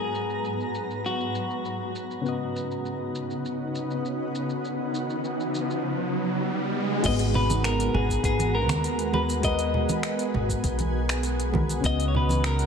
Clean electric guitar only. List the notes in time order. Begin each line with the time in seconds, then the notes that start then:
Already playing: G#4
1.06 F#4
7.06 D#5
7.35 B4
7.65 A#4
7.94 G#4
8.25 G#4
8.55 A#4
9.14 B4
9.44 D#5
11.86 D#5
12.08 C#5
12.16 B4
12.46 A#4